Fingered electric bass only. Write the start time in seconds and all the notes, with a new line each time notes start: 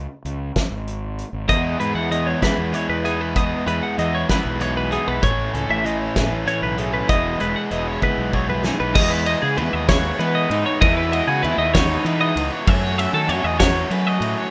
0.25 C#2
0.71 G#1
1.33 G#1
1.49 E2
1.79 G#2
1.95 E2
2.42 E3
2.58 E2
2.89 E2
3.66 E2
3.98 E2
4.45 B1
5.07 B1
5.23 A1
5.54 C#2
5.69 A1
6.16 A2
6.31 A1
6.62 B1
7.09 E1
7.41 E1
7.71 E1
8.18 B1
8.80 B1
8.95 E2
9.43 C#3
9.58 E2
9.73 D#2
10.19 E3
10.50 G#2
10.81 E2
11.27 C#3
11.43 E2
11.58 D#2
12.05 E3
12.36 C#2
12.67 F#2
13.13 D#3
13.29 F#2
13.44 E2
13.90 F#3
14.20 A2